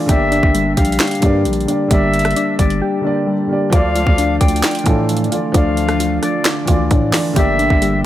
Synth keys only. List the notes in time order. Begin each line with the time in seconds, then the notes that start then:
0.09 G4
0.32 D4
0.54 G3
0.77 G4
1.23 G3
1.68 D4
1.91 G3
2.36 D4
2.59 G3
2.82 G4
3.04 D4
3.27 G3
3.73 D5
3.95 F4
4.18 D4
4.41 D5
4.86 D4
5.32 F4
5.54 D4
6.00 F4
6.23 D4
6.45 D5
6.68 F4
6.91 D4
7.36 G4
7.59 D4
7.82 G3